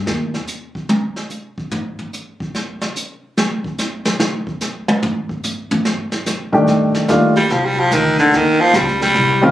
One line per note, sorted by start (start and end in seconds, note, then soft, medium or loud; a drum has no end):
0.06 0.33 D#2 medium
0.06 snare medium
0.34 snare soft
0.48 hi-hat pedal medium
0.75 kick medium
0.89 high tom medium
1.16 snare soft
1.30 hi-hat pedal soft
1.58 kick medium
1.71 floor tom medium
1.99 floor tom soft
2.13 hi-hat pedal medium
2.40 kick medium
2.55 snare soft
2.82 snare soft
2.96 hi-hat pedal medium
3.38 snare medium
3.64 kick medium
3.78 snare soft
3.78 hi-hat pedal medium
4.05 snare loud
4.20 snare medium
4.47 kick medium
4.61 snare soft
4.61 hi-hat pedal medium
4.88 high tom medium
5.03 floor tom medium
5.29 kick medium
5.44 floor tom soft
5.44 hi-hat pedal medium
5.71 floor tom medium
5.85 snare medium
6.12 snare soft
6.26 snare soft
6.26 hi-hat pedal medium
6.52 7.06 D#3 medium
6.52 7.06 G3 medium
6.52 7.06 A3 medium
6.52 7.07 D4 medium
6.52 7.07 G4 medium
6.52 kick medium
6.67 6.92 F2 medium
6.67 brush sweep soft
6.67 kick soft
6.67 snare soft
6.94 muted upright bass stroke soft
6.94 snare medium
7.08 7.49 D#2 medium
7.08 7.33 D#3 medium
7.08 7.33 G3 medium
7.08 7.33 A3 medium
7.08 7.34 D4 medium
7.08 7.34 F4 medium
7.08 kick soft
7.08 snare medium
7.08 hi-hat pedal medium
7.36 7.53 G3 medium
7.36 snare soft
7.49 7.90 C2 medium
7.49 7.67 F3 medium
7.49 brush sweep soft
7.49 kick soft
7.49 snare soft
7.65 7.81 G3 loud
7.79 7.95 F3 medium
7.91 8.31 D2 medium
7.91 8.19 D#3 medium
7.91 kick soft
7.91 snare medium
7.91 hi-hat pedal medium
8.18 8.37 D3 medium
8.18 snare soft
8.32 8.72 D#2 medium
8.32 8.62 D#3 medium
8.32 brush sweep soft
8.32 kick soft
8.32 snare soft
8.60 8.77 F3 loud
8.73 9.14 C#2 loud
8.73 9.02 G3 medium
8.73 kick soft
8.73 snare medium
8.73 hi-hat pedal medium
8.88 snare soft
9.01 9.51 G3 medium
9.01 snare soft
9.15 9.51 C2 medium
9.15 brush sweep soft
9.15 kick soft
9.15 snare soft
9.41 9.51 D#3 medium
9.41 9.51 G3 medium
9.41 9.51 C4 medium
9.41 9.51 C#4 medium
9.41 9.51 F4 medium